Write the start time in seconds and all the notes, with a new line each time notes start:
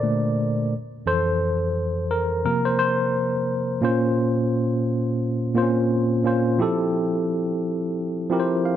Already playing: A#2 D3 A4 A#4 C5 D5
0.03 A#2 D3 A3
1.06 F2 E3 A4 C5
2.11 A#4
2.45 C3 F3 A#3 A#4
2.65 C5
2.79 C5
3.81 A#2 A#3 C#4 F4 C5
5.54 A#2 A#3 C4 F4
5.58 C5
5.62 C#4
6.23 A#2 A#3 C#4 F4 C5
6.58 F3 C4 E4 G4 A4
8.29 F3 C4 E4 G4 A#4
8.40 C5
8.65 F5